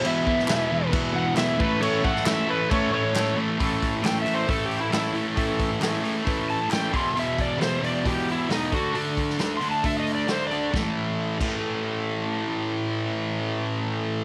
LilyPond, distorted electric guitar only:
\new Staff \with { instrumentName = "Distorted electric guitar" } { \clef bass \time 4/4 \key a \major \tempo 4 = 135 <e, b, e>8 <e, b, e>8 <e, b, e>8 <e, b, e>8 <e, b, e>8 <e, b, e>8 <e, b, e>8 <a, e a>8 | <a, e a>8 <a, e a>8 <a, e a>8 <a, e a>8 <a, e a>8 <a, e a>8 <a, e a>8 <a, e a>8 | <a, e a>4 <a, e a>8 <a, e a>8 <a, e a>4 <a, e a>8 <a, e a>8 | <a, e a>4 <a, e a>8 <a, e a>8 <a, e a>4 <a, e a>8 <e, b, e>8 |
<e, b, e>4 <e, b, e>8 <e, b, e>8 <e, b, e>4 <e, b, e>8 <d a d'>8 | <d a d'>4 <d a d'>8 <d a d'>8 <d a d'>4 <d a d'>8 <d a d'>8 | <a, e a>8 r4 <a, e a>2~ <a, e a>8~ | <a, e a>1 | }